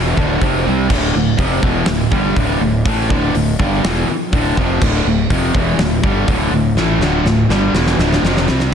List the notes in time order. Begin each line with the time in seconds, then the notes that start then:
Already playing: E1 E2 B2 E3
0.16 D1 D2 A2 D3, kick
0.42 F1 F2 C3 F3, kick, open hi-hat
0.67 C2 C3 G3 C4
0.90 D1 D2 A2 D3, kick, crash
1.14 D1 D2 A2
1.38 F1 F2 C3 F3, kick, open hi-hat
1.62 E1 E2 B2 E3, kick
1.86 D1 D2 A2, snare, open hi-hat
2.11 G1 G2 D3 G3, kick
2.36 D1 D2 A2 D3, kick, open hi-hat
2.61 D1 D2 A2
2.85 A1 A2 E3 A3, kick, open hi-hat
3.10 D1 D2 A2 D3, kick
3.34 D1 D2 A2, open hi-hat
3.59 G1 G2 D3 G3, kick
3.83 E1 E2 B2 E3, snare, open hi-hat
4.08 muted fingered electric bass stroke, muted distorted electric guitar stroke
4.32 D1 D2 A2 D3, kick, open hi-hat
4.57 F1 F2 C3 F3, kick
4.82 D1 D2 A2 D3, kick, crash
5.05 D1 D2 A2
5.30 F1 F2 C3 F3, kick, open hi-hat
5.55 E1 E2 B2 E3, kick
5.78 D1 D2 A2, snare, open hi-hat
6.02 G1 G2 D3 G3, kick
6.28 D1 D2 A2 D3, kick, open hi-hat
6.51 D1 D2 A2
6.75 A1 A2 E3 A3, snare
6.99 D1 D2 A2 D3, snare
7.24 D1 D2 A2, snare
7.49 G1 G2 D3 G3, snare
7.73 E1 E2 B2 E3, snare
7.87 snare
7.99 D1 D2 A2 D3, snare
8.13 snare
8.23 F1 F2 C3 F3, snare
8.37 snare
8.48 C2 C3 G3 C4, snare
8.60 snare